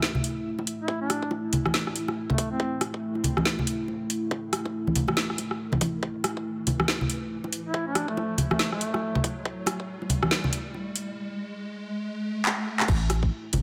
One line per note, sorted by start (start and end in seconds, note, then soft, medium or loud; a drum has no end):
0.00 11.17 A3 medium
0.00 11.17 E4 medium
0.00 snare loud
0.00 riser medium
0.15 high bongo medium
0.15 low conga medium
0.24 closed hi-hat medium
0.59 high bongo medium
0.67 closed hi-hat medium
0.80 0.99 E4 medium
0.88 kick loud
0.88 high bongo medium
1.01 1.31 D4 medium
1.10 cross-stick medium
1.10 closed hi-hat medium
1.23 kick medium
1.31 high bongo medium
1.53 closed hi-hat medium
1.53 low conga medium
1.66 cross-stick medium
1.66 high bongo medium
1.66 high conga medium
1.74 snare loud
1.87 cross-stick soft
1.96 closed hi-hat medium
2.08 cross-stick soft
2.08 high bongo medium
2.30 2.49 A3 medium
2.30 kick medium
2.30 low conga loud
2.38 kick loud
2.38 closed hi-hat medium
2.38 high bongo soft
2.51 2.81 C4 medium
2.60 kick loud
2.81 cross-stick medium
2.81 closed hi-hat medium
2.81 high bongo medium
2.94 kick medium
3.15 high bongo soft
3.24 closed hi-hat medium
3.24 low conga loud
3.37 cross-stick medium
3.37 high conga loud
3.45 snare loud
3.59 high bongo medium
3.59 low conga medium
3.67 closed hi-hat medium
3.88 high bongo soft
4.10 closed hi-hat medium
4.31 kick loud
4.31 high bongo medium
4.53 cross-stick medium
4.53 closed hi-hat medium
4.66 kick medium
4.66 high bongo medium
4.87 high conga medium
4.95 closed hi-hat medium
4.95 low conga loud
5.08 cross-stick medium
5.08 high bongo medium
5.08 high conga medium
5.17 snare loud
5.30 cross-stick medium
5.38 closed hi-hat medium
5.38 high bongo medium
5.51 cross-stick medium
5.72 kick medium
5.72 high conga medium
5.72 low conga medium
5.81 kick loud
5.81 closed hi-hat medium
5.81 high bongo medium
5.81 high conga medium
6.03 kick loud
6.24 cross-stick medium
6.24 closed hi-hat medium
6.24 high bongo medium
6.37 kick medium
6.67 closed hi-hat medium
6.67 high bongo medium
6.67 low conga medium
6.80 cross-stick medium
6.80 high conga medium
6.88 snare loud
7.01 high bongo soft
7.01 low conga medium
7.10 closed hi-hat medium
7.44 high bongo medium
7.53 closed hi-hat medium
7.66 7.85 E4 medium
7.74 kick loud
7.74 high bongo medium
7.87 8.08 D4 medium
7.95 cross-stick medium
7.95 closed hi-hat medium
8.08 8.38 A3 medium
8.08 kick medium
8.17 high bongo medium
8.38 closed hi-hat medium
8.38 low conga medium
8.51 8.70 A3 medium
8.51 cross-stick medium
8.51 high bongo medium
8.51 high conga medium
8.59 snare loud
8.72 9.32 A3 loud
8.72 cross-stick medium
8.81 closed hi-hat medium
8.94 cross-stick medium
8.94 high bongo medium
9.15 kick medium
9.15 low conga medium
9.24 kick loud
9.24 closed hi-hat medium
9.24 high bongo soft
9.45 kick loud
9.66 cross-stick medium
9.66 closed hi-hat medium
9.66 high bongo medium
9.80 kick medium
10.02 high bongo medium
10.10 closed hi-hat medium
10.10 low conga loud
10.23 cross-stick medium
10.23 high conga medium
10.31 snare loud
10.44 high bongo medium
10.44 low conga medium
10.53 closed hi-hat medium
10.74 high bongo medium
10.96 closed hi-hat medium
12.45 clap loud
12.80 clap medium
12.88 13.30 A1 loud
12.88 13.62 A3 medium
12.88 13.62 E4 medium
12.88 kick loud
12.88 crash loud
13.10 cross-stick medium
13.10 closed hi-hat medium
13.10 high bongo medium
13.23 kick medium
13.53 13.62 G1 loud
13.53 closed hi-hat medium
13.53 high bongo medium
13.53 low conga loud